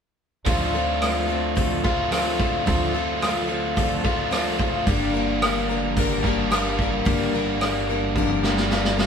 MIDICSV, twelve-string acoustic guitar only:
0, 0, Header, 1, 2, 480
1, 0, Start_track
1, 0, Key_signature, -1, "minor"
1, 0, Tempo, 549451
1, 407, Time_signature, 4, 2, 24, 8
1, 7918, End_track
2, 0, Start_track
2, 0, Title_t, "Twelve-string acoustic guitar"
2, 0, Program_c, 0, 25
2, 395, Note_on_c, 0, 50, 63
2, 403, Note_on_c, 0, 53, 62
2, 408, Note_on_c, 0, 60, 73
2, 411, Note_on_c, 0, 65, 63
2, 411, Note_on_c, 0, 69, 75
2, 641, Note_off_c, 0, 69, 0
2, 642, Note_off_c, 0, 50, 0
2, 645, Note_off_c, 0, 53, 0
2, 648, Note_off_c, 0, 60, 0
2, 649, Note_off_c, 0, 65, 0
2, 652, Note_on_c, 0, 69, 43
2, 667, Note_on_c, 0, 65, 39
2, 673, Note_on_c, 0, 60, 36
2, 885, Note_off_c, 0, 60, 0
2, 889, Note_on_c, 0, 53, 45
2, 890, Note_off_c, 0, 69, 0
2, 893, Note_off_c, 0, 65, 0
2, 896, Note_on_c, 0, 60, 41
2, 903, Note_on_c, 0, 65, 43
2, 910, Note_on_c, 0, 69, 47
2, 1106, Note_off_c, 0, 69, 0
2, 1116, Note_on_c, 0, 69, 46
2, 1124, Note_off_c, 0, 65, 0
2, 1129, Note_off_c, 0, 53, 0
2, 1132, Note_off_c, 0, 60, 0
2, 1135, Note_on_c, 0, 65, 44
2, 1143, Note_on_c, 0, 60, 43
2, 1358, Note_off_c, 0, 60, 0
2, 1358, Note_on_c, 0, 50, 61
2, 1362, Note_off_c, 0, 65, 0
2, 1362, Note_off_c, 0, 69, 0
2, 1363, Note_on_c, 0, 53, 63
2, 1369, Note_on_c, 0, 60, 70
2, 1373, Note_on_c, 0, 65, 61
2, 1375, Note_on_c, 0, 69, 70
2, 1597, Note_off_c, 0, 69, 0
2, 1603, Note_off_c, 0, 50, 0
2, 1604, Note_off_c, 0, 65, 0
2, 1606, Note_off_c, 0, 53, 0
2, 1608, Note_on_c, 0, 69, 49
2, 1609, Note_off_c, 0, 60, 0
2, 1614, Note_on_c, 0, 65, 47
2, 1630, Note_on_c, 0, 60, 39
2, 1843, Note_off_c, 0, 60, 0
2, 1848, Note_off_c, 0, 69, 0
2, 1848, Note_on_c, 0, 53, 57
2, 1852, Note_off_c, 0, 65, 0
2, 1854, Note_on_c, 0, 60, 55
2, 1869, Note_on_c, 0, 65, 63
2, 1877, Note_on_c, 0, 69, 62
2, 2087, Note_off_c, 0, 69, 0
2, 2089, Note_off_c, 0, 53, 0
2, 2091, Note_off_c, 0, 60, 0
2, 2094, Note_off_c, 0, 65, 0
2, 2098, Note_on_c, 0, 69, 43
2, 2105, Note_on_c, 0, 65, 37
2, 2121, Note_on_c, 0, 60, 35
2, 2322, Note_off_c, 0, 60, 0
2, 2322, Note_off_c, 0, 65, 0
2, 2325, Note_on_c, 0, 53, 58
2, 2328, Note_on_c, 0, 50, 61
2, 2332, Note_on_c, 0, 60, 66
2, 2333, Note_on_c, 0, 65, 77
2, 2334, Note_off_c, 0, 69, 0
2, 2345, Note_on_c, 0, 69, 72
2, 2561, Note_off_c, 0, 69, 0
2, 2567, Note_off_c, 0, 53, 0
2, 2569, Note_off_c, 0, 50, 0
2, 2571, Note_off_c, 0, 60, 0
2, 2571, Note_off_c, 0, 65, 0
2, 2571, Note_on_c, 0, 69, 46
2, 2585, Note_on_c, 0, 65, 40
2, 2592, Note_on_c, 0, 60, 39
2, 2804, Note_off_c, 0, 60, 0
2, 2806, Note_on_c, 0, 53, 47
2, 2811, Note_off_c, 0, 69, 0
2, 2815, Note_on_c, 0, 60, 51
2, 2817, Note_off_c, 0, 65, 0
2, 2826, Note_on_c, 0, 65, 51
2, 2835, Note_on_c, 0, 69, 53
2, 3024, Note_off_c, 0, 69, 0
2, 3035, Note_on_c, 0, 69, 47
2, 3043, Note_off_c, 0, 65, 0
2, 3048, Note_off_c, 0, 53, 0
2, 3052, Note_off_c, 0, 60, 0
2, 3053, Note_on_c, 0, 65, 42
2, 3067, Note_on_c, 0, 60, 41
2, 3282, Note_off_c, 0, 69, 0
2, 3287, Note_on_c, 0, 50, 60
2, 3291, Note_off_c, 0, 60, 0
2, 3292, Note_off_c, 0, 65, 0
2, 3293, Note_on_c, 0, 53, 70
2, 3302, Note_on_c, 0, 60, 70
2, 3302, Note_on_c, 0, 65, 74
2, 3311, Note_on_c, 0, 69, 68
2, 3518, Note_off_c, 0, 69, 0
2, 3528, Note_on_c, 0, 69, 49
2, 3529, Note_off_c, 0, 50, 0
2, 3531, Note_off_c, 0, 53, 0
2, 3536, Note_off_c, 0, 60, 0
2, 3536, Note_off_c, 0, 65, 0
2, 3545, Note_on_c, 0, 65, 42
2, 3554, Note_on_c, 0, 60, 37
2, 3758, Note_off_c, 0, 60, 0
2, 3765, Note_on_c, 0, 53, 55
2, 3768, Note_on_c, 0, 60, 55
2, 3769, Note_off_c, 0, 65, 0
2, 3769, Note_off_c, 0, 69, 0
2, 3779, Note_on_c, 0, 65, 55
2, 3789, Note_on_c, 0, 69, 60
2, 3995, Note_off_c, 0, 69, 0
2, 4005, Note_on_c, 0, 69, 43
2, 4007, Note_off_c, 0, 53, 0
2, 4009, Note_off_c, 0, 60, 0
2, 4010, Note_off_c, 0, 65, 0
2, 4020, Note_on_c, 0, 65, 42
2, 4028, Note_on_c, 0, 60, 36
2, 4248, Note_off_c, 0, 69, 0
2, 4252, Note_on_c, 0, 43, 63
2, 4255, Note_off_c, 0, 65, 0
2, 4256, Note_on_c, 0, 50, 65
2, 4259, Note_off_c, 0, 60, 0
2, 4261, Note_on_c, 0, 55, 68
2, 4264, Note_on_c, 0, 58, 70
2, 4265, Note_on_c, 0, 62, 77
2, 4267, Note_on_c, 0, 70, 73
2, 4479, Note_off_c, 0, 70, 0
2, 4485, Note_off_c, 0, 62, 0
2, 4490, Note_on_c, 0, 70, 52
2, 4491, Note_off_c, 0, 43, 0
2, 4493, Note_off_c, 0, 50, 0
2, 4495, Note_on_c, 0, 62, 45
2, 4496, Note_off_c, 0, 55, 0
2, 4497, Note_off_c, 0, 58, 0
2, 4510, Note_on_c, 0, 58, 45
2, 4513, Note_on_c, 0, 55, 44
2, 4724, Note_off_c, 0, 55, 0
2, 4730, Note_off_c, 0, 70, 0
2, 4731, Note_off_c, 0, 58, 0
2, 4733, Note_off_c, 0, 62, 0
2, 4734, Note_on_c, 0, 55, 45
2, 4741, Note_on_c, 0, 58, 49
2, 4751, Note_on_c, 0, 62, 53
2, 4756, Note_on_c, 0, 70, 50
2, 4965, Note_off_c, 0, 70, 0
2, 4970, Note_off_c, 0, 62, 0
2, 4972, Note_off_c, 0, 55, 0
2, 4975, Note_on_c, 0, 70, 49
2, 4976, Note_off_c, 0, 58, 0
2, 4980, Note_on_c, 0, 62, 42
2, 4991, Note_on_c, 0, 58, 43
2, 4995, Note_on_c, 0, 55, 38
2, 5206, Note_off_c, 0, 55, 0
2, 5211, Note_off_c, 0, 58, 0
2, 5212, Note_on_c, 0, 43, 66
2, 5213, Note_off_c, 0, 70, 0
2, 5215, Note_off_c, 0, 62, 0
2, 5216, Note_on_c, 0, 55, 69
2, 5221, Note_on_c, 0, 50, 73
2, 5221, Note_on_c, 0, 58, 67
2, 5230, Note_on_c, 0, 62, 74
2, 5233, Note_on_c, 0, 70, 78
2, 5444, Note_off_c, 0, 70, 0
2, 5451, Note_off_c, 0, 43, 0
2, 5453, Note_off_c, 0, 55, 0
2, 5455, Note_on_c, 0, 70, 43
2, 5456, Note_off_c, 0, 50, 0
2, 5456, Note_off_c, 0, 58, 0
2, 5456, Note_off_c, 0, 62, 0
2, 5467, Note_on_c, 0, 62, 47
2, 5475, Note_on_c, 0, 58, 48
2, 5481, Note_on_c, 0, 55, 41
2, 5675, Note_off_c, 0, 55, 0
2, 5685, Note_off_c, 0, 58, 0
2, 5685, Note_on_c, 0, 55, 59
2, 5690, Note_off_c, 0, 62, 0
2, 5693, Note_off_c, 0, 70, 0
2, 5696, Note_on_c, 0, 58, 61
2, 5701, Note_on_c, 0, 62, 65
2, 5708, Note_on_c, 0, 70, 66
2, 5928, Note_off_c, 0, 55, 0
2, 5929, Note_off_c, 0, 70, 0
2, 5933, Note_off_c, 0, 58, 0
2, 5936, Note_off_c, 0, 62, 0
2, 5940, Note_on_c, 0, 70, 46
2, 5957, Note_on_c, 0, 62, 46
2, 5960, Note_on_c, 0, 58, 41
2, 5971, Note_on_c, 0, 55, 36
2, 6159, Note_off_c, 0, 55, 0
2, 6161, Note_off_c, 0, 58, 0
2, 6162, Note_on_c, 0, 43, 72
2, 6163, Note_off_c, 0, 62, 0
2, 6163, Note_on_c, 0, 50, 73
2, 6166, Note_off_c, 0, 70, 0
2, 6169, Note_on_c, 0, 55, 61
2, 6171, Note_on_c, 0, 58, 69
2, 6173, Note_on_c, 0, 62, 69
2, 6177, Note_on_c, 0, 70, 68
2, 6403, Note_off_c, 0, 62, 0
2, 6404, Note_off_c, 0, 70, 0
2, 6406, Note_off_c, 0, 43, 0
2, 6407, Note_off_c, 0, 50, 0
2, 6410, Note_off_c, 0, 55, 0
2, 6411, Note_off_c, 0, 58, 0
2, 6414, Note_on_c, 0, 62, 44
2, 6414, Note_on_c, 0, 70, 50
2, 6428, Note_on_c, 0, 55, 42
2, 6429, Note_on_c, 0, 58, 42
2, 6635, Note_off_c, 0, 55, 0
2, 6644, Note_off_c, 0, 58, 0
2, 6645, Note_on_c, 0, 55, 43
2, 6652, Note_off_c, 0, 62, 0
2, 6652, Note_off_c, 0, 70, 0
2, 6655, Note_on_c, 0, 58, 47
2, 6662, Note_on_c, 0, 62, 46
2, 6668, Note_on_c, 0, 70, 52
2, 6886, Note_off_c, 0, 70, 0
2, 6888, Note_off_c, 0, 55, 0
2, 6891, Note_off_c, 0, 62, 0
2, 6892, Note_off_c, 0, 58, 0
2, 6896, Note_on_c, 0, 70, 41
2, 6902, Note_on_c, 0, 62, 46
2, 6913, Note_on_c, 0, 58, 46
2, 6924, Note_on_c, 0, 55, 41
2, 7131, Note_on_c, 0, 43, 64
2, 7133, Note_off_c, 0, 55, 0
2, 7133, Note_off_c, 0, 70, 0
2, 7134, Note_off_c, 0, 58, 0
2, 7136, Note_off_c, 0, 62, 0
2, 7140, Note_on_c, 0, 50, 66
2, 7143, Note_on_c, 0, 55, 68
2, 7145, Note_on_c, 0, 58, 65
2, 7146, Note_on_c, 0, 62, 75
2, 7150, Note_on_c, 0, 70, 83
2, 7360, Note_off_c, 0, 70, 0
2, 7370, Note_off_c, 0, 43, 0
2, 7370, Note_on_c, 0, 70, 46
2, 7372, Note_off_c, 0, 62, 0
2, 7375, Note_off_c, 0, 50, 0
2, 7377, Note_off_c, 0, 55, 0
2, 7377, Note_off_c, 0, 58, 0
2, 7383, Note_on_c, 0, 62, 42
2, 7389, Note_on_c, 0, 58, 41
2, 7397, Note_on_c, 0, 55, 37
2, 7598, Note_off_c, 0, 55, 0
2, 7605, Note_off_c, 0, 58, 0
2, 7608, Note_on_c, 0, 55, 54
2, 7610, Note_off_c, 0, 70, 0
2, 7612, Note_off_c, 0, 62, 0
2, 7616, Note_on_c, 0, 58, 60
2, 7622, Note_on_c, 0, 62, 63
2, 7628, Note_on_c, 0, 70, 65
2, 7825, Note_off_c, 0, 70, 0
2, 7835, Note_on_c, 0, 70, 44
2, 7837, Note_off_c, 0, 62, 0
2, 7846, Note_off_c, 0, 58, 0
2, 7847, Note_on_c, 0, 62, 42
2, 7849, Note_off_c, 0, 55, 0
2, 7856, Note_on_c, 0, 58, 39
2, 7864, Note_on_c, 0, 55, 41
2, 7918, Note_off_c, 0, 55, 0
2, 7918, Note_off_c, 0, 58, 0
2, 7918, Note_off_c, 0, 62, 0
2, 7918, Note_off_c, 0, 70, 0
2, 7918, End_track
0, 0, End_of_file